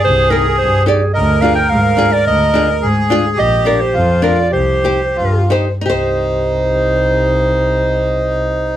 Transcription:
<<
  \new Staff \with { instrumentName = "Clarinet" } { \time 2/4 \key c \minor \tempo 4 = 105 c''8 bes'8 c''8 aes'8 | ees''8 f''16 g''16 f''16 f''8 d''16 | ees''4 r4 | ees''8 d''16 c''8. d''8 |
c''4. r8 | c''2~ | c''2 | }
  \new Staff \with { instrumentName = "Accordion" } { \time 2/4 \key c \minor aes'4. r8 | bes'2~ | bes'4 aes'4 | g'4 f'4 |
g'4 f'8 ees'8 | ees'2~ | ees'2 | }
  \new Staff \with { instrumentName = "Nylon-string guitar" } { \time 2/4 \key c \minor r8 <ees' g' bes'>16 r8. <ees' g' d''>16 r16 | r8 <d' f' aes'>16 r8. <d' f' aes'>16 r16 | r8 <d' f' aes'>16 r8. <d' f' aes'>16 r16 | r8 <d' f' bes'>16 r8. <d' f' bes'>16 r16 |
r8 <ees' g' c''>16 r8. <ees' g' c''>16 r16 | <ees' g' c''>2~ | <ees' g' c''>2 | }
  \new Staff \with { instrumentName = "Double bass" } { \clef bass \time 2/4 \key c \minor c,4 g,4 | d,4 aes,4 | d,4 aes,4 | bes,,4 f,4 |
c,4 g,4 | c,2~ | c,2 | }
>>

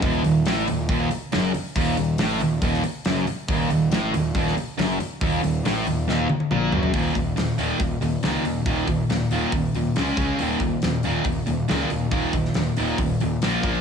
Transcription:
<<
  \new Staff \with { instrumentName = "Distorted electric guitar" } { \clef bass \time 4/4 \key des \lydian \tempo 4 = 139 ees,8 ees,8 a,8 ees,8 ees,8 r8 ges,8 r8 | ees,8 ees,8 a,8 ees,8 ees,8 r8 ges,8 r8 | ees,8 ees,8 a,8 ees,8 ees,8 r8 ges,8 r8 | ees,8 ees,8 a,8 ees,8 ees,8 r8 bes,8 ges,8 |
<ees, bes, ees>8 <ees, bes,>8 <ees, bes,>8 <ees, bes, ees>8 <ees, bes,>8 <ees, bes,>8 <ees, bes, ees>8 <ees, bes,>8 | <ees, bes, ees>8 <ees, bes,>8 <ees, bes,>8 <ees, bes, ees>8 <ees, bes,>8 <ees, bes,>8 <des aes des'>8 <des aes des'>8 | <ees, bes, ees>8 <ees, bes,>8 <ees, bes,>8 <ees, bes, ees>8 <ees, bes,>8 <ees, bes,>8 <ees, bes, ees>8 <ees, bes,>8 | <ees, bes, ees>8 <ees, bes,>8 <ees, bes,>8 <ees, bes, ees>8 <ees, bes,>8 <ees, bes,>8 <bes, f bes>8 <bes, f bes>8 | }
  \new Staff \with { instrumentName = "Picked electric bass" } { \clef bass \time 4/4 \key des \lydian ees,,8 ees,,8 a,,8 ees,,8 ees,,8 r8 ges,,8 r8 | ees,,8 ees,,8 a,,8 ees,,8 ees,,8 r8 ges,,8 r8 | ees,,8 ees,,8 a,,8 ees,,8 ees,,8 r8 ges,,8 r8 | ees,,8 ees,,8 a,,8 ees,,8 ees,,8 r8 bes,,8 ges,,8 |
ees,,8 ees,,8 ees,,8 ees,,8 ees,,8 ees,,8 des,8 ees,8 | ees,,8 ees,,8 ees,,8 ees,,8 ees,,8 ees,,8 des,8 des,8 | ees,,8 ees,,8 ees,,8 ees,,8 ees,,8 ees,,8 des,8 ees,8 | ees,,8 ees,,8 ees,,8 ees,,8 ees,,8 ees,,8 bes,,8 bes,,8 | }
  \new DrumStaff \with { instrumentName = "Drums" } \drummode { \time 4/4 <hho bd>8 hho8 <hho sn>8 hho8 <hho bd>8 hho8 <hho sn>8 hho8 | <hho bd>8 hho8 <hho sn>8 hho8 <hho bd>16 sn16 hho8 <hho sn>8 hho8 | <hho bd>8 hho8 <hho sn>8 hho8 <hho bd>16 sn16 hho8 <hho sn>8 hho8 | <hho bd>8 hho8 <hho sn>8 hho8 sn8 tommh16 tommh16 toml8 tomfh16 tomfh16 |
<hho bd>8 <hho bd>8 <hho sn>8 hho8 <hho bd>8 hho8 <hho sn>8 hho8 | <hho bd>8 <hho bd>8 <hho sn>8 hho8 <hho bd>8 hho8 <hho sn>8 <hho bd>8 | hho8 <hho bd>8 <hho sn>8 hho8 <hho bd>8 hho8 <hho sn>8 hho8 | <hho bd>8 <hho bd>16 sn16 <hho sn>8 hho8 <hho bd>8 hho8 <hho sn>8 <hho bd>8 | }
>>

